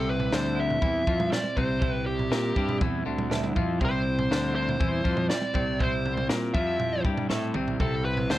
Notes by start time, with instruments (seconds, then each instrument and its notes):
Already playing: fingered electric bass C2, clean electric guitar C3 G3 C4 E4
0.09 lead electric guitar B4
0.20 floor tom
0.32 fingered electric bass D2, clean electric guitar D3, lead electric guitar C5, snare
0.55 clean electric guitar G3 C4 E4
0.60 lead electric guitar E5
0.71 floor tom
0.82 fingered electric bass E2, clean electric guitar E3, kick, floor tom
1.07 fingered electric bass F2, clean electric guitar F3, kick
1.20 floor tom, mid tom
1.30 clean electric guitar G3 C4 E4, lead electric guitar D5, snare, floor tom
1.44 mid tom
1.57 fingered electric bass C2, clean electric guitar C3, lead electric guitar C5, kick, floor tom
1.79 clean electric guitar G3 C4 E4, kick, floor tom
1.92 lead electric guitar B4
2.06 lead electric guitar G4
2.19 floor tom
2.31 fingered electric bass A#2, clean electric guitar A#3, snare
2.56 fingered electric bass G2, clean electric guitar G3 C4 E4, kick
2.69 floor tom
2.81 fingered electric bass E2, clean electric guitar E3, kick, floor tom
3.06 fingered electric bass D2, clean electric guitar D3
3.19 floor tom, mid tom
3.30 clean electric guitar G3 C4 E4, snare, floor tom
3.44 mid tom
3.56 fingered electric bass F2, clean electric guitar F3, kick, floor tom
3.79 fingered electric bass C2, clean electric guitar C3 G3 C4 E4, kick, floor tom
3.85 lead electric guitar C5
4.19 floor tom
4.31 fingered electric bass D2, clean electric guitar D3, snare
4.53 clean electric guitar G3 C4 E4, lead electric guitar C5
4.69 floor tom
4.80 fingered electric bass E2, clean electric guitar E3, kick, floor tom
5.04 fingered electric bass F2, clean electric guitar F3, kick
5.17 floor tom, mid tom
5.29 clean electric guitar G3 C4 E4, lead electric guitar D5, snare, floor tom
5.42 mid tom
5.54 fingered electric bass C2, clean electric guitar C3, kick, floor tom
5.79 clean electric guitar G3 C4 E4, lead electric guitar C5, kick, floor tom
6.05 floor tom
6.17 floor tom, mid tom
6.29 fingered electric bass A#2, clean electric guitar A#3, snare
6.54 fingered electric bass F2, clean electric guitar F3 G3 C4 E4, lead electric guitar E5, kick
6.80 floor tom
7.05 fingered electric bass G2, clean electric guitar G3, kick
7.18 floor tom, mid tom
7.29 fingered electric bass A2, clean electric guitar G3 A3 C4 E4, snare
7.54 fingered electric bass C2, clean electric guitar C3, mid tom
7.68 floor tom
7.80 fingered electric bass C2, clean electric guitar C3 G3 C4 E4, lead electric guitar A4, kick, floor tom
8.05 lead electric guitar B4
8.17 floor tom
8.30 fingered electric bass D2, clean electric guitar D3, lead electric guitar C5, snare